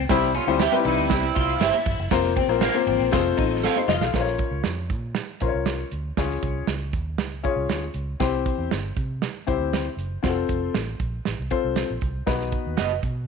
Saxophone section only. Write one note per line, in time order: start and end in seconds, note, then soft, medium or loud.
0.10 0.30 G3 loud
0.10 0.31 C4 loud
0.10 0.30 E4 loud
0.36 0.56 A3 medium
0.36 0.56 C4 medium
0.36 0.56 F4 loud
0.60 0.80 C4 medium
0.60 0.80 E4 medium
0.60 0.80 G4 loud
0.87 1.07 G3 loud
0.87 1.06 C4 medium
0.87 1.06 E4 loud
1.11 1.83 G3 loud
1.11 1.83 C4 loud
1.11 1.82 E4 loud